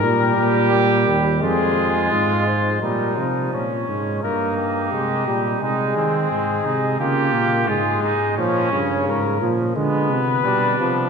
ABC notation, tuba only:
X:1
M:4/4
L:1/8
Q:1/4=86
K:Bbm
V:1 name="Tuba" clef=bass
B,, B,,2 E,, F,,2 A,,2 | B,, C, B,, A,, =G,,2 C, B,, | C, E, A,, C, D, B,, A,, A,, | [K:Bbdor] B,, G,, A,, B,, =D, C, =B,, C, |]